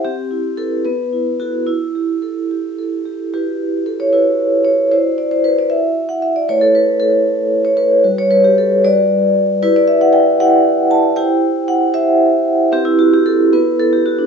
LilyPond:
\new Staff \with { instrumentName = "Vibraphone" } { \time 6/8 \key e \minor \tempo 4. = 76 << { g'4 a'8 b'4 fis'8 | e'2~ e'8 r8 | g'4 a'16 cis''16 b'4 cis''8 | c''8 d''16 c''16 b'16 d''16 e''8. fis''16 e''16 d''16 |
cis''16 a'16 b'8 a'4~ a'16 cis''16 b'8~ | b'16 cis''16 b'16 g'16 a'8 d''4. | b'16 d''16 e''16 fis''16 g''8 fis''4 a''8 | g''4 fis''8 e''4. |
g'16 e'16 fis'16 g'16 a'8 b'8 a'16 g'16 fis'16 d'16 | } \\ { c'8 e'8 <e' b'>8 b8 e'8 <e' a'>8 | r8 g'8 a'8 g'8 a'8 g'8 | <e' fis' b'>4. <e' fis'>4. | <e' fis' d''>2. |
<a e' b'>2. | <g fis' b'>4. <g fis' b'>4. | <e' g' d''>4. <e' g' d''>4. | <e' g' c''>4. <e' g' c''>4. |
<c' e' b'>4. <b e' a'>4. | } >> }